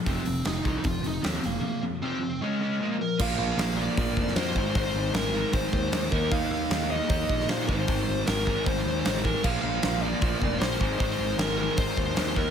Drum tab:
CC |----------------|----------------|x---------------|----------------|
HH |o-o-o-o-o-o-o-o-|----------------|----o---o---o---|o---o---o---o---|
SD |----o-------o---|----------------|----o------oo---|----o-------o---|
BD |o-----o-o-------|----------------|o-------o-o---o-|o-------o-o---o-|

CC |----------------|----------------|x---------------|----------------|
HH |o---o---o---o---|o---o---o---o---|----o---o---o---|o---o---o---o---|
SD |----oo-----oo---|----o-------o---|----o-------o---|----oo------o---|
BD |o-------o-o---o-|o-----o-o-----o-|o-------o-o---o-|o-------o-o---o-|